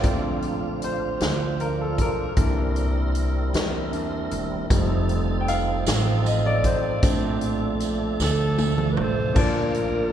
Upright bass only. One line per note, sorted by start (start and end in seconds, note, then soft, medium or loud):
0.04 1.17 A#1 medium
1.21 1.94 D2 medium
1.99 2.34 B1 medium
2.37 3.50 C2 medium
3.54 4.27 E2 medium
4.32 4.67 E1 medium
4.71 5.83 F1 medium
5.87 6.60 A1 medium
6.64 7.00 A1 medium
7.03 8.15 A#1 medium
8.20 8.93 D2 medium
8.97 9.33 A1 medium
9.36 10.12 A#1 medium